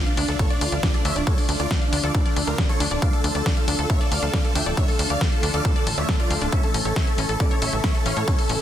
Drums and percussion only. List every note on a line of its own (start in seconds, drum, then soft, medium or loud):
0.07 closed hi-hat medium
0.17 open hi-hat loud
0.28 closed hi-hat medium
0.39 kick loud
0.39 closed hi-hat medium
0.50 closed hi-hat medium
0.61 open hi-hat loud
0.72 closed hi-hat medium
0.83 kick loud
0.83 snare loud
0.83 closed hi-hat medium
0.94 closed hi-hat medium
1.05 open hi-hat loud
1.16 closed hi-hat medium
1.27 kick loud
1.27 closed hi-hat medium
1.38 open hi-hat medium
1.49 open hi-hat loud
1.60 closed hi-hat medium
1.71 kick loud
1.71 snare loud
1.71 closed hi-hat medium
1.82 closed hi-hat medium
1.93 open hi-hat loud
2.04 closed hi-hat medium
2.15 kick loud
2.15 closed hi-hat medium
2.26 closed hi-hat medium
2.36 open hi-hat loud
2.47 closed hi-hat medium
2.58 kick loud
2.58 snare loud
2.58 closed hi-hat medium
2.69 closed hi-hat medium
2.80 open hi-hat loud
2.91 closed hi-hat medium
3.02 kick loud
3.02 closed hi-hat medium
3.13 closed hi-hat medium
3.24 open hi-hat loud
3.35 closed hi-hat medium
3.46 kick loud
3.46 snare loud
3.46 closed hi-hat medium
3.57 closed hi-hat medium
3.68 open hi-hat loud
3.79 closed hi-hat medium
3.90 kick loud
3.90 closed hi-hat medium
4.01 closed hi-hat medium
4.12 open hi-hat loud
4.23 closed hi-hat medium
4.33 kick loud
4.33 snare loud
4.33 closed hi-hat medium
4.44 closed hi-hat medium
4.55 open hi-hat loud
4.66 closed hi-hat medium
4.77 kick loud
4.77 closed hi-hat medium
4.88 open hi-hat medium
4.99 open hi-hat loud
5.10 closed hi-hat medium
5.21 kick loud
5.21 snare loud
5.21 closed hi-hat medium
5.32 closed hi-hat medium
5.43 open hi-hat loud
5.54 closed hi-hat medium
5.65 kick loud
5.65 closed hi-hat medium
5.76 closed hi-hat medium
5.87 open hi-hat loud
5.98 closed hi-hat soft
6.09 kick loud
6.09 snare loud
6.09 closed hi-hat medium
6.20 closed hi-hat medium
6.30 open hi-hat loud
6.41 closed hi-hat medium
6.52 kick loud
6.52 closed hi-hat medium
6.63 closed hi-hat medium
6.74 open hi-hat loud
6.85 closed hi-hat medium
6.96 kick loud
6.96 snare loud
6.96 closed hi-hat medium
7.07 closed hi-hat medium
7.18 open hi-hat loud
7.29 closed hi-hat medium
7.40 kick loud
7.40 closed hi-hat medium
7.51 closed hi-hat soft
7.62 open hi-hat loud
7.84 kick loud
7.84 snare loud
7.84 closed hi-hat medium
7.95 closed hi-hat medium
8.06 open hi-hat loud
8.17 closed hi-hat medium
8.28 kick loud
8.28 closed hi-hat medium
8.39 open hi-hat medium
8.49 open hi-hat loud